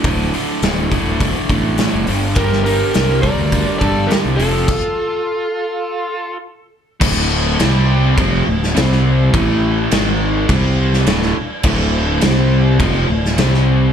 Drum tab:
CC |----------------|----------------|x---------------|x---x---x---x---|
HH |o-o-o-o-o-o-o-o-|o-o-o-o-o-o-o-o-|----------------|----------------|
SD |----o-------o---|-o--o-------o---|----------------|----o------ooo--|
BD |o-----o-o-o-----|o-----o-o-o-----|o---------------|o-------o-------|

CC |x---x---x---x---|x---x---x---x---|
HH |----------------|----------------|
SD |----o------ooo--|----o------ooo--|
BD |o-------o-------|o-------o-------|